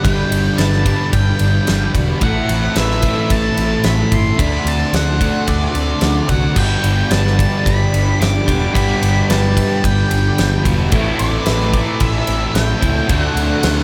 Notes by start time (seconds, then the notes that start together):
Already playing: D4 B4 D5 B5
0.03 G1 G2 D3 G3 G5, kick, ride
0.31 G1 D4, ride
0.58 G1 B4 A5, snare, ride
0.73 snare
0.85 G2 D3 G3, kick, ride
1.13 G1 G3 G5, kick, ride
1.39 G1 D4, ride
1.67 G1 G3, snare, ride
1.95 E1 F#4, kick, ride
2.21 A1 A2 E3 A3 A4 E5 F#5, kick, ride
2.49 A1 C4, ride
2.76 A1 B4 E5, snare, ride
2.91 snare
3.01 A2 E3 A3 E4, kick, ride
3.30 A1 A3 A5, kick, ride
3.57 A1 C4, ride
3.84 A1 A3 B5, snare, ride
4.12 G1 E4 C6, kick, ride
4.37 D2 D3 A3 D5 F#5 B5 C6, kick, ride
4.41 D4
4.65 D2 C4 A5, ride
4.92 D2 A4 F#5, snare, ride
5.18 D3 A3 D4 F#4, kick, ride
5.47 D2 A3 D5, kick, ride
5.74 D2 C4, ride
6.01 D2 A3, snare, ride
6.29 C2 F#4 F#5, kick, ride
6.55 G1 G2 D3 G3 B3 D4 G4 G5 B5, kick, crash
6.59 G4
6.83 G1 D4, ride
7.11 G1 B4 A5, snare, ride
7.27 snare
7.37 D3 G3, kick, ride
7.41 G2
7.66 G1 B5, kick, ride
7.93 G1 D4, ride
8.21 G1 D6, snare, ride
8.46 E1 G2 D3 G3 B3 D4 G4, kick, ride
8.72 G1 G2 D3 G3 B3 D4 B5, kick, ride
8.77 G3 G4
9.02 G1 D4, ride
9.29 G1 B4 A5, snare, ride
9.54 D3 G3, kick, ride
9.58 G2
9.84 G1 G5, kick, ride
10.11 G1 D4, ride
10.38 G1, snare, ride
10.63 E1 G2 D3 G3 B3 D4 F#4 G4, kick, ride
10.90 A1 A2 E3 A3 C4 A4 E5, kick, ride
10.95 A3 E4
11.19 A1 C4 D5, ride
11.46 A1 B4, snare, ride
11.60 snare
11.73 A2 E3 A3 E4 D5, kick, ride
12.00 A1 A3 E5, kick, ride
12.27 A1 C4, ride
12.54 A1 A3 G5, snare, ride
12.81 C#2 A2 E3 A3 C4 E4, kick, ride
13.07 D2 D3 A3 C4 F#4 D5 F#5 C6, kick, ride
13.12 D4
13.35 D2 C4, ride
13.63 D2 A4, snare, ride
13.79 snare